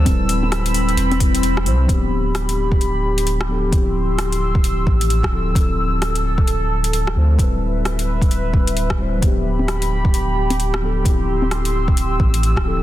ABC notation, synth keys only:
X:1
M:4/4
L:1/8
Q:"Swing 16ths" 1/4=131
K:Gmix
V:1 name="Synth keys"
[G,CEB]4- [G,CEB] [G,CEB]2 [G,CEc] | [F,B,DG]6- [F,B,DG] [F,B,DA] | [F,CEG]6- [F,CEG] [F,CEA] | [F,CEA]6- [F,CEA] [F,CEc] |
[G,CEB]4- [G,CEB] [G,CEB]2 [G,CEc] | [F,B,DG]6- [F,B,DG] [F,B,DA] | [F,CEG]6- [F,CEG] [F,CEA] |]